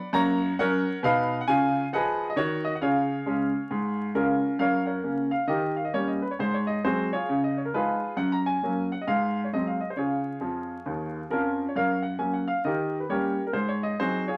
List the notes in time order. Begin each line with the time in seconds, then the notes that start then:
Already playing: D5 F#5
0.13 F#2 A#3 C#5 F#5 A#5
0.59 F#3 C#4 A#4 C#5 F#5
1.03 B2 D#4 B4 F5
1.41 F#5
1.47 C#3 F4 G#5
1.93 F3 G#4 B4 D#5 F#5
2.30 D#5
2.36 D#3 F#4 C#5
2.64 D#5
2.75 F#5
2.81 C#3 F4 G#4 C#5 F5
3.26 C#3 G#3 C#4
3.71 G#2
4.14 C#3 G#3 C#4 F4 A#4
4.59 F#2 A#4 C#5 F5
4.86 A#4 C#5 F#5
5.03 C#3 A#3 C#4
5.31 F5
5.47 D#3 G4 A#4 D#5
5.76 F5
5.85 D#5
5.94 G3 A#3 C#4 C#5
6.08 D#5
6.22 B4
6.31 C#5
6.39 G#2 C5
6.54 C#5
6.67 D#5
6.84 F#3 G#3 C4 F#4 G#4 C5
7.13 F4 G#4 C#5
7.29 C#3
7.44 D#5
7.57 C#5
7.65 A#4
7.73 F3 G#3 D#4 F4 G#4 B4
8.17 F#2 F#5
8.32 A#5
8.46 G#5
8.63 F#3 A#3 C#4
8.92 F#5
9.01 D#5
9.07 G#2 F5
9.44 C#5
9.53 F#3 G#3 C4 D#5
9.67 F5
9.81 D#5
9.90 C5
9.96 C#3 F4 G#4 C#5
10.41 F2 F3
10.86 D#2 D#3
11.30 F2 F3 C#4 F4 A#4
11.69 C#5
11.76 F#2 A#4 C#5 F5
12.03 F#5
12.19 F#3 A#3 C#4 G#5
12.33 F#5
12.48 F5
12.64 D#3 G4 A#4 D#5
13.00 B4
13.09 G3 A#3 C#4 G4 A#4 C#5
13.47 A#4
13.53 G#2 C5
13.68 C#5
13.83 D#5
14.00 F#3 C4 D#4 F#4 G#4 C5
14.28 F4 G#4 C#5